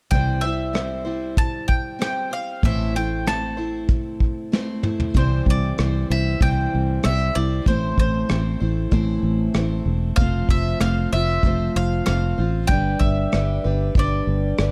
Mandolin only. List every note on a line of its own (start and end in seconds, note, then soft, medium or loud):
0.11 0.44 G5 medium
0.41 1.40 E5 medium
1.38 1.67 A5 loud
1.68 2.00 G5 medium
2.02 2.31 G5 medium
2.33 2.65 F5 medium
2.65 2.96 E5 medium
2.96 3.27 G5 medium
3.28 3.86 A5 medium
5.17 5.45 C5 medium
5.50 6.07 D5 medium
6.11 6.42 E5 medium
6.42 7.04 G5 medium
7.05 7.36 E5 medium
7.35 7.67 D5 medium
7.68 7.98 C5 medium
7.99 9.20 C5 medium
10.16 10.49 F5 medium
10.50 10.81 E5 medium
10.81 11.10 F5 medium
11.13 11.76 E5 medium
11.76 12.05 F5 medium
12.06 12.65 F5 medium
12.67 12.97 G5 loud
12.99 13.90 E5 medium
13.99 14.72 D5 medium